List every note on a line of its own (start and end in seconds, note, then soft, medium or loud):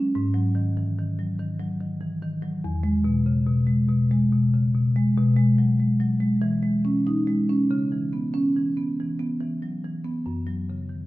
0.00 0.13 C#4 medium
0.15 1.37 G#2 medium
0.34 0.67 F#3 medium
0.55 0.89 D#3 medium
0.77 0.98 E3 medium
0.99 1.32 D#3 medium
1.19 1.52 F#3 medium
1.39 1.72 D#3 medium
1.59 1.93 F#3 medium
1.80 2.14 D#3 medium
2.01 2.22 E3 medium
2.23 2.56 D#3 medium
2.42 2.63 F#3 medium
2.64 3.85 E2 medium
2.83 3.17 G#3 medium
3.04 3.38 B2 medium
3.26 3.47 C#3 medium
3.47 3.80 B2 medium
3.67 4.02 G#3 medium
3.89 4.23 B2 medium
4.11 4.45 G#3 medium
4.32 4.65 B2 medium
4.54 4.74 C#3 medium
4.74 5.07 B2 medium
4.96 5.16 G#3 medium
5.17 6.39 B2 medium
5.37 5.70 G#3 medium
5.58 5.92 F#3 medium
5.80 6.00 G#3 medium
6.00 6.33 F#3 medium
6.20 6.41 G#3 medium
6.42 7.65 E3 medium
6.63 6.96 G#3 medium
6.85 7.18 C#4 medium
7.07 7.27 D#4 medium
7.27 7.61 G#3 medium
7.50 7.70 C#4 medium
7.71 8.94 C#3 medium
7.92 8.25 E3 medium
8.13 8.47 B3 medium
8.34 8.55 C#4 medium
8.56 8.90 E3 medium
8.77 9.10 B3 medium
9.00 9.32 E3 medium
9.19 9.53 B3 medium
9.41 9.74 E3 medium
9.62 9.83 F#3 soft
9.84 10.18 E3 medium
10.05 10.25 B3 medium
10.26 11.07 F#2 medium
10.47 10.80 F#3 medium
10.70 11.02 C#3 medium
10.89 11.07 D#3 soft